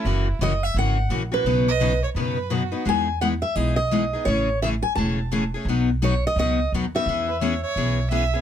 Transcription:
X:1
M:4/4
L:1/16
Q:"Swing" 1/4=171
K:E
V:1 name="Steel-string acoustic guitar"
z4 d2 e2 f4 z2 B2- | B6 z8 z2 | g4 f2 e2 d2 d6 | c4 e2 g2 a6 z2 |
z4 c2 d2 d4 z2 e2- | e12 z4 |]
V:2 name="Violin"
E3 z12 z | z2 d4 c2 B4 F3 z | z16 | z16 |
z16 | z2 B2 c2 c6 e4 |]
V:3 name="Steel-string acoustic guitar"
[C,E,^A,CF]2 z2 [C,E,A,CF] z3 [C,E,A,CF]2 z2 [C,E,A,CF] z [A,CF]2 | [B,,C,F,B,DB]2 z2 [B,,C,F,B,DB] z3 [B,,C,F,B,DB]2 z2 [B,,C,F,B,DB] z [F,B,DB]2 | [E,G,B,DG]2 z2 [E,G,B,DG] z3 [E,G,B,DG]2 z2 [E,G,B,DG] z [B,DG]2 | [C,E,A,CG]2 z2 [C,E,A,CG] z3 [C,E,A,CG]2 z2 [C,E,A,CG] z [A,CG]2 |
[B,,F,B,DF]2 z2 [B,,F,B,DF] z3 [B,,F,B,DF]2 z2 [B,,F,B,DF] z [B,DF]2 | [E,B,CG]2 z2 [E,B,CG] z3 [E,B,CG]2 z2 [E,B,CG] z [B,CG]2 |]
V:4 name="Upright bass" clef=bass
F,,,4 F,,,4 G,,,4 ^A,,,4 | B,,,8 F,,8 | E,,8 B,,,8 | A,,,8 E,,,8 |
B,,,8 C,,4 D,,4 | E,,8 B,,,8 |]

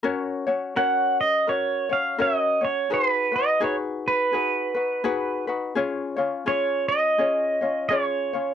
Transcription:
X:1
M:4/4
L:1/8
Q:"Swing" 1/4=84
K:F#
V:1 name="Pedal steel guitar"
z2 f d c e d c | B d c B4 z | z2 c d3 c2 |]
V:2 name="Ukulele"
[CFAc] [CFc] [CFAc]2 [CFAc] [CFc] [CFAc] [CFc] | [DFGB] [DFB] [DFGB]2 [DFGB] [DFB] [DFGB] [DFB] | [CEGc] [CEc] [CEGc]2 [CEGc] [CEc] [CEGc] [CEc] |]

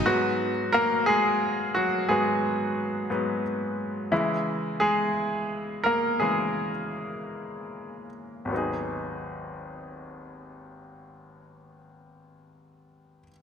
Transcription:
X:1
M:6/8
L:1/8
Q:3/8=56
K:G#m
V:1 name="Grand piano"
F2 [A,A] [G,G]2 [F,F] | [G,G]3 z3 | E2 [G,G]3 [A,A] | G4- G z |
z6 | z6 |]
V:2 name="Grand piano" clef=bass
[G,,F,B,] z4 z | [G,,F,B,]3 [G,,F,B,] z2 | [C,E,G,]3 z3 | [C,E,G,] z4 z |
[G,,,D,,F,B,DG]6- | [G,,,D,,F,B,DG]6 |]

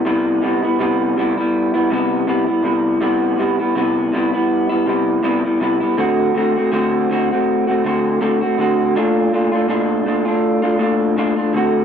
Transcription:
X:1
M:4/4
L:1/16
Q:"Swing 16ths" 1/4=81
K:Clyd
V:1 name="Clean electric guitar"
[C,G,B,E]2 [C,G,B,E] [G,B,E] [C,G,B,E]2 [C,G,B,E] [G,B,E]2 [G,B,E] [C,G,B,E]2 [C,G,B,E] [G,B,E] [C,G,B,E]2 | [C,G,B,E]2 [C,G,B,E] [G,B,E] [C,G,B,E]2 [C,G,B,E] [G,B,E]2 [G,B,E] [C,G,B,E]2 [C,G,B,E] [G,B,E] [C,G,B,E] [G,B,E] | [D,A,CF]2 [D,A,CF] [A,CF] [D,A,CF]2 [D,A,CF] [A,CF]2 [A,CF] [D,A,CF]2 [D,A,CF] [A,CF] [D,A,CF]2 | [_B,,A,D=F]2 [B,,A,DF] [A,DF] [B,,A,DF]2 [B,,A,DF] [A,DF]2 [A,DF] [B,,A,DF]2 [B,,A,DF] [A,DF] [D,A,C^F]2 |]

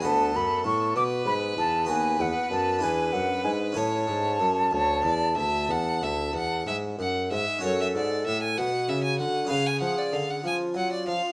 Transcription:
X:1
M:12/8
L:1/16
Q:3/8=64
K:A
V:1 name="Flute"
a2 b2 c'2 d'2 b2 a2 g2 f2 a2 g2 f2 g2 | a16- a2 z6 | [K:F#m] A6 F6 G6 ^E6 |]
V:2 name="Violin"
A6 B6 B6 B6 | c6 c2 d2 e2 f2 e2 f2 e2 f2 e2 | [K:F#m] c e d2 e g f2 e g f2 ^e g f d e f g2 f d e2 |]
V:3 name="Harpsichord"
[B,FB]12 [B,FB]6 [DEB]6 | [CEA]24 | [K:F#m] [CFA]12 [CGB]12 |]
V:4 name="Harpsichord" clef=bass
D,,2 F,,2 A,,2 B,,2 G,,2 E,,2 ^D,,2 E,,2 F,,2 E,,2 F,,2 G,,2 | A,,2 G,,2 F,,2 D,,2 E,,2 D,,2 E,,2 D,,2 E,,2 G,,2 F,,2 G,,2 | [K:F#m] F,,2 G,,2 A,,2 B,,2 C,2 D,2 C,2 ^E,2 D,2 E,2 F,2 E,2 |]
V:5 name="Bassoon" clef=bass
D,,2 F,,2 A,,2 B,,2 G,,2 E,,2 ^D,,2 E,,2 F,,2 E,,2 F,,2 G,,2 | A,,2 G,,2 F,,2 D,,2 E,,2 D,,2 E,,2 D,,2 E,,2 G,,2 F,,2 G,,2 | [K:F#m] F,,2 G,,2 A,,2 B,,2 C,2 D,2 C,2 ^E,2 D,2 E,2 F,2 E,2 |]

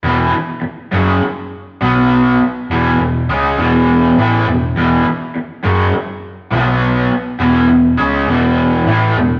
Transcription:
X:1
M:4/4
L:1/8
Q:1/4=102
K:E
V:1 name="Overdriven electric guitar" clef=bass
[E,,B,,E,] z2 [F,,C,F,] z2 [B,,F,B,]2 | z [E,,B,,E,] [E,,B,,] [C,G,C] [E,,B,,E,]2 [A,,E,A,] [E,,B,,] | [E,,B,,E,] z2 [F,,C,F,] z2 [B,,F,B,]2 | z [E,,B,,E,] [E,,B,,] [C,G,C] [E,,B,,E,]2 [A,,E,A,] [E,,B,,] |]
V:2 name="Picked electric bass" clef=bass
E,,, z2 F,,, z2 B,,,2 | z E,,, E,,, C,, E,,,2 A,,, E,,, | z3 F,,, z2 B,,,2 | z E,,, E,,, C,, E,,,2 A,,, E,,, |]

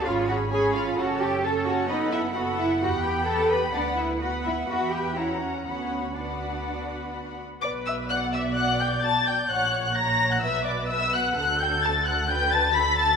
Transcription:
X:1
M:4/4
L:1/16
Q:1/4=129
K:Bm
V:1 name="Violin section"
^e2 f2 ^g2 e2 f2 =g2 a2 f2 | ^d2 e2 f2 e2 f2 g2 a2 b2 | d2 e2 f2 e2 f2 g2 e2 c2 | c4 d8- d2 z2 |
d'2 e'2 f'2 e'2 f'2 g'2 a'2 g'2 | f'3 f' ^a'3 f' e'2 d'2 e'2 f'2 | f'2 g'2 a'2 f'2 g'2 a'2 b'2 a'2 |]
V:2 name="Violin section"
[cb]4 [cb]4 [ca]4 [ca]4 | [fb]4 [fb]4 [gb]8 | [fb]4 [fb]4 [eb]4 [f^a]4 | [fb]4 [fb]8- [fb]2 z2 |
d2 e2 f2 e2 f2 g2 a2 g2 | f3 f ^a3 f e2 d2 e2 f2 | f2 g2 a2 f2 g2 a2 b2 a2 |]
V:3 name="Viola section"
[C^G]4 [CG]4 [CA]4 [CA]4 | [B,A]4 [B,A]4 [B,G]8 | [B,B]4 [B,B]4 [B,B]4 [CF]4 | [B,F]4 [B,F]8- [B,F]2 z2 |
B4 d12 | c4 c4 B8 | A8 B4 A4 |]
V:4 name="Cello section"
^E2 F2 ^G2 E2 F2 =G2 A2 F2 | ^D2 E2 F2 E2 F2 G2 A2 B2 | D2 E2 F2 E2 F2 G2 E2 C2 | C4 D8- D2 z2 |
B,,16 | ^A,,8 B,,8 | D,16 |]
V:5 name="Double bass section" clef=bass
^G,,,8 F,,,8- | F,,,8 E,,8 | D,,8 E,,8 | D,,12- D,,2 z2 |
B,,,16 | ^A,,,8 B,,,8 | D,,16 |]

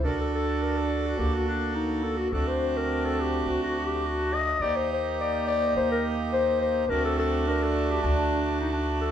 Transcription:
X:1
M:2/4
L:1/16
Q:1/4=105
K:none
V:1 name="Clarinet"
_B A A2 B A2 ^F | G ^F D2 _E2 A F | A c2 _B2 A G2 | ^F F G2 F2 _e2 |
d c c2 d2 d2 | c _B z2 c2 c2 | _B A A2 B A2 G | D4 _E D2 A |]
V:2 name="Accordion"
[D^FA]8- | [D^FA]8 | [A,D^F]8- | [A,D^F]8 |
[_B,_EG]8- | [_B,_EG]8 | [A,D^F]8- | [A,D^F]8 |]
V:3 name="Trombone"
D8 | _B,8 | C8- | C6 z2 |
_B,8- | _B,8 | C4 D4- | D6 z2 |]
V:4 name="Upright bass" clef=bass
D,,8 | D,,8 | D,,8 | D,,8 |
_E,,8 | _E,,8 | D,,8 | D,,8 |]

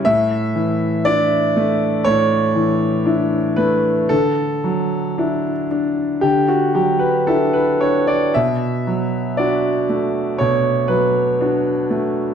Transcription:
X:1
M:4/4
L:1/16
Q:1/4=59
K:Bm
V:1 name="Grand piano"
e4 d4 c6 B2 | A8 G F G B A B c d | e4 d4 c2 B6 |]
V:2 name="Grand piano"
A,,2 E,2 [DE]2 A,2 A,,2 E,2 [DE]2 A,2 | D,2 F,2 [DE]2 D2 D,2 F,2 [DE]2 D2 | B,,2 F,2 [DF]2 A,2 B,,2 F,2 [DF]2 A,2 |]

